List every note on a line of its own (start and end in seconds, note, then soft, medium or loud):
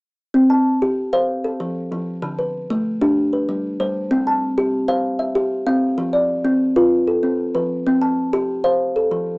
0.34 0.66 C4 medium
0.50 0.97 A5 medium
0.82 1.13 G4 medium
1.13 1.29 C5 medium
1.13 1.44 F5 medium
1.44 1.91 A4 medium
1.60 1.91 F3 medium
1.92 2.23 F3 medium
2.22 2.54 D3 medium
2.38 2.85 B4 medium
2.70 3.01 A3 medium
3.01 3.17 D4 medium
3.01 3.33 G4 medium
3.33 3.80 B4 soft
3.49 3.79 G3 medium
3.80 4.11 G3 medium
3.80 4.27 C5 medium
4.11 4.42 C4 medium
4.27 4.74 A5 medium
4.58 4.89 G4 medium
4.88 5.20 C5 medium
4.88 5.36 F5 medium
5.19 5.67 E5 medium
5.35 5.67 G4 medium
5.67 5.98 C4 medium
5.67 6.14 F5 medium
5.98 6.30 F3 medium
6.13 6.61 D5 medium
6.45 6.76 C4 medium
6.76 7.08 F4 medium
6.76 7.24 B4 medium
7.08 7.55 A4 medium
7.23 7.55 C4 medium
7.55 7.86 F3 medium
7.55 8.02 B4 medium
7.86 8.18 C4 medium
8.01 8.49 A5 medium
8.33 8.65 G4 medium
8.64 8.80 C5 medium
8.64 8.96 F5 medium
8.96 9.38 A4 medium
9.12 9.38 F3 medium